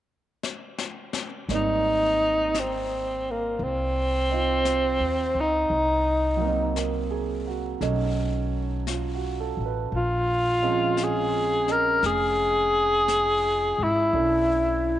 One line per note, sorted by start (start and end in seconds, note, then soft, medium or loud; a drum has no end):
0.43 snare soft
0.78 snare medium
1.13 snare medium
1.49 3.55 G#1 medium
1.49 5.71 G3 soft
1.49 5.71 A#3 soft
1.49 4.28 C4 soft
1.49 4.30 D#4 soft
1.49 brush sweep soft
1.49 snare soft
1.55 2.61 D#4 medium
2.54 brush sweep soft
2.54 snare soft
2.54 hi-hat pedal soft
2.60 3.33 C4 medium
3.31 3.65 A#3 medium
3.59 4.96 C2 medium
3.59 brush sweep soft
3.64 5.42 C4 medium
4.30 5.70 C4 soft
4.30 5.71 D#4 soft
4.30 5.72 F4 soft
4.65 brush sweep soft
4.65 snare soft
4.65 hi-hat pedal soft
5.00 5.33 D#2 medium
5.35 5.68 C#2 medium
5.40 6.78 D#4 medium
5.70 7.77 C2 medium
5.70 brush sweep soft
6.37 7.79 F#3 soft
6.37 7.80 A#3 soft
6.44 7.83 C4 soft
6.44 7.81 D#4 soft
6.76 7.42 A#4 soft
6.76 brush sweep soft
6.76 snare soft
6.76 hi-hat pedal soft
7.11 7.65 G#4 soft
7.47 8.01 F#4 soft
7.81 9.53 B1 medium
7.81 9.91 F#3 soft
7.81 9.92 A3 soft
7.81 9.92 C#4 soft
7.81 9.92 D#4 soft
7.81 brush sweep soft
7.81 snare soft
8.87 9.36 F4 soft
8.87 brush sweep soft
8.87 snare soft
8.87 hi-hat pedal soft
9.14 9.59 F#4 soft
9.40 9.72 A4 soft
9.57 9.89 A1 medium
9.66 10.02 B4 soft
9.92 11.99 A#1 medium
9.92 11.05 F4 medium
9.92 brush sweep soft
10.62 14.14 F3 medium
10.62 14.13 G#3 soft
10.62 14.13 C4 soft
10.62 11.65 C#4 soft
10.97 brush sweep soft
10.97 snare soft
10.97 hi-hat pedal soft
11.04 11.74 G#4 medium
11.67 14.12 C#4 soft
11.67 14.15 G#4 soft
11.67 14.14 D#5 soft
11.67 snare soft
11.72 12.05 A#4 medium
12.03 13.75 F1 medium
12.03 13.85 G#4 loud
12.03 brush sweep soft
12.03 snare soft
13.08 brush sweep soft
13.08 snare soft
13.08 hi-hat pedal soft
13.78 14.11 G#1 medium
13.83 14.99 E4 medium
14.13 14.99 B1 medium
14.13 14.99 A3 soft
14.13 14.99 C#4 soft
14.13 14.99 D4 soft
14.13 14.99 E4 soft
14.13 brush sweep soft